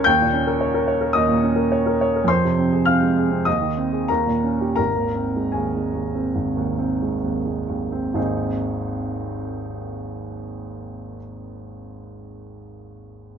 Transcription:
0.00 0.10 C#2 medium
0.00 0.10 A#4 medium
0.00 0.10 C#5 medium
0.00 0.10 G#5 medium
0.00 0.10 A#5 medium
0.00 0.10 A#6 medium
0.04 1.11 D#2 medium
0.04 1.10 G5 medium
0.04 1.13 G6 medium
0.21 0.42 A#2 soft
0.33 0.55 C#4 soft
0.47 0.69 A#4 medium
0.61 0.83 C#5 medium
0.74 0.96 A#4 medium
0.88 1.10 C#5 medium
1.01 1.23 A#4 soft
1.13 2.24 D#2 soft
1.13 1.94 D#5 medium
1.13 1.97 D#6 medium
1.29 1.51 A#2 soft
1.43 1.65 C#4 soft
1.56 1.78 A#4 soft
1.72 1.93 C#5 medium
1.86 2.08 A#4 soft
2.01 2.23 C#5 medium
2.16 2.29 A#4 soft
2.24 3.41 F2 medium
2.24 2.86 C6 medium
2.29 2.83 C5 medium
2.44 2.66 C3 soft
2.59 2.81 C4 soft
2.72 2.95 G#4 soft
2.85 3.10 C4 soft
2.85 3.42 F5 medium
2.85 3.46 F6 medium
3.02 3.25 G#3 soft
3.17 3.40 G#4 soft
3.31 3.46 C4 soft
3.45 4.07 D#2 soft
3.45 4.04 D#5 soft
3.45 4.08 D#6 medium
3.61 3.86 D#3 soft
3.77 4.02 C4 soft
3.92 4.08 G#4 soft
4.08 4.77 D#2 soft
4.08 4.74 A#4 soft
4.08 4.74 A#5 medium
4.26 4.53 A#2 soft
4.44 4.71 C#4 soft
4.61 4.78 G4 soft
4.76 6.32 G#1 soft
4.76 5.51 A#4 soft
4.76 5.54 A#5 medium
4.96 5.27 D#2 soft
5.15 5.47 C4 soft
5.36 5.67 G#3 soft
5.52 5.86 D#2 soft
5.52 7.18 G#4 soft
5.52 7.21 G#5 soft
5.75 6.07 G#3 soft
5.93 6.27 D#2 soft
6.15 6.48 C4 soft
6.35 8.11 G#1 soft
6.57 6.91 D#2 soft
6.78 7.14 C4 soft
7.02 7.37 G#3 soft
7.24 7.60 D#2 soft
7.45 7.83 G#3 soft
7.68 8.06 D#2 soft
7.92 8.14 C4 soft
8.14 11.16 G#1 soft
8.14 11.17 D#2 soft
8.14 11.17 G#3 soft
8.14 11.18 C4 soft
8.14 11.18 D#4 soft
8.14 11.18 G#4 soft

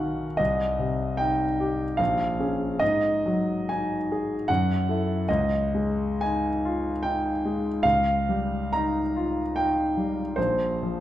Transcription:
0.00 0.36 B1 soft
0.00 0.42 D#3 soft
0.00 0.41 D#4 soft
0.00 0.42 F#4 soft
0.00 0.42 F5 soft
0.00 0.42 F#5 medium
0.00 0.42 G#5 medium
0.37 1.96 C2 soft
0.37 1.18 D#5 medium
0.79 1.43 C3 soft
1.17 1.84 D#4 soft
1.17 1.99 G5 medium
1.60 2.00 G4 soft
1.97 2.78 A#1 soft
1.97 2.80 F5 medium
2.39 2.77 C#4 soft
2.39 2.77 G#4 soft
2.79 4.45 G#2 soft
2.79 3.69 D#5 medium
3.26 3.95 F#3 soft
3.69 4.34 D#4 soft
3.69 4.48 G#5 medium
4.12 4.50 G#4 soft
4.48 5.26 F#2 soft
4.48 5.27 F#5 medium
4.89 5.25 E4 soft
4.89 5.25 A4 soft
5.29 7.81 C#2 soft
5.29 6.21 D#5 medium
5.75 6.48 G#3 soft
6.21 6.90 D#4 soft
6.21 7.05 G#5 medium
6.65 7.29 F4 soft
7.03 7.68 D#4 soft
7.03 7.83 G5 medium
7.45 7.85 G#3 soft
7.83 10.33 C#2 soft
7.83 8.73 F5 medium
8.29 9.00 G3 soft
8.73 9.41 D#4 soft
8.73 9.56 A#5 medium
9.17 9.81 F4 soft
9.56 10.21 D#4 soft
9.56 10.37 G5 medium
9.97 10.38 G3 soft
10.36 11.00 A#1 soft
10.36 11.00 C5 medium
10.83 11.00 F3 soft

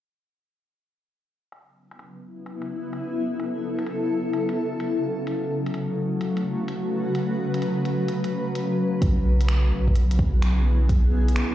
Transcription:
1.52 11.55 C#3 medium
1.52 closed hi-hat medium
1.61 11.55 F#3 medium
1.61 5.69 B3 medium
1.75 6.03 E4 medium
1.91 closed hi-hat medium
1.99 closed hi-hat soft
2.46 closed hi-hat soft
2.62 closed hi-hat medium
2.74 6.35 A4 medium
2.93 closed hi-hat soft
3.40 closed hi-hat medium
3.79 closed hi-hat medium
3.87 closed hi-hat medium
4.33 closed hi-hat soft
4.49 closed hi-hat medium
4.80 closed hi-hat medium
5.27 closed hi-hat medium
5.55 9.02 A3 medium
5.66 closed hi-hat medium
5.74 closed hi-hat medium
5.91 9.02 F#4 medium
6.19 10.84 B4 medium
6.19 closed hi-hat soft
6.37 closed hi-hat soft
6.68 closed hi-hat medium
7.15 closed hi-hat medium
7.54 closed hi-hat soft
7.62 closed hi-hat soft
7.85 closed hi-hat soft
8.08 closed hi-hat soft
8.24 closed hi-hat soft
8.55 closed hi-hat medium
9.02 9.71 B1 loud
9.02 kick loud
9.02 closed hi-hat soft
9.27 11.55 B3 medium
9.41 closed hi-hat soft
9.48 finger snap loud
9.48 closed hi-hat soft
9.73 9.95 B1 medium
9.73 11.55 G#4 medium
9.88 11.55 E4 medium
9.88 kick medium
9.96 11.36 B1 loud
9.96 closed hi-hat soft
10.11 closed hi-hat soft
10.19 kick medium
10.42 finger snap medium
10.42 closed hi-hat medium
10.89 kick loud
10.89 closed hi-hat soft
11.28 closed hi-hat soft
11.36 finger snap medium
11.36 closed hi-hat soft

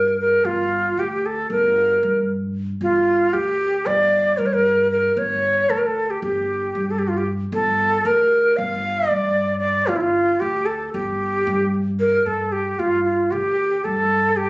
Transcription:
0.00 0.36 G2 loud
0.00 0.19 A#4 loud
0.21 0.47 A#4 loud
0.45 0.91 G1 loud
0.45 1.01 F4 loud
0.97 1.44 D2 medium
0.97 1.27 G4 medium
1.26 1.50 A4 medium
1.50 1.96 G1 medium
1.50 2.25 A#4 medium
2.03 2.72 G2 medium
2.81 3.27 G1 medium
2.81 3.35 F4 loud
3.33 3.80 D2 medium
3.33 3.88 G4 medium
3.86 4.32 G1 medium
3.86 4.39 D5 loud
4.38 5.07 G2 loud
4.38 4.47 A#4 medium
4.46 4.55 C#5 medium
4.54 4.91 A#4 loud
4.91 5.19 A#4 medium
5.17 5.63 G1 medium
5.17 5.71 C#5 loud
5.70 6.16 D2 medium
5.70 5.79 A4 medium
5.78 5.88 A#4 medium
5.86 6.12 A4 medium
6.10 6.22 G4 medium
6.22 6.68 G1 medium
6.22 6.92 G4 medium
6.75 7.44 G2 medium
6.90 7.00 A4 medium
6.99 7.10 G4 medium
7.08 7.19 F4 medium
7.17 7.27 G4 medium
7.52 7.99 G1 loud
7.52 8.08 A4 loud
8.05 8.51 D2 medium
8.05 8.58 A#4 loud
8.56 9.04 G1 medium
8.56 9.10 F5 medium
9.08 9.80 G2 medium
9.08 9.58 D5 loud
9.59 9.89 D5 loud
9.87 10.35 G1 medium
9.87 9.98 F4 medium
9.96 10.02 E4 medium
10.01 10.42 F4 medium
10.40 10.88 D2 medium
10.40 10.67 G4 medium
10.66 10.92 A4 medium
10.93 11.40 G1 medium
10.93 11.69 G4 medium
11.47 12.16 G2 medium
12.00 12.28 A#4 loud
12.26 12.72 G2 medium
12.26 12.54 A4 medium
12.52 12.81 G4 medium
12.79 13.33 G2 medium
12.79 13.04 F4 medium
13.04 13.33 F4 medium
13.31 13.78 D2 medium
13.31 13.86 G4 medium
13.84 14.50 G2 medium
13.84 14.38 A4 medium
14.37 14.50 G4 medium

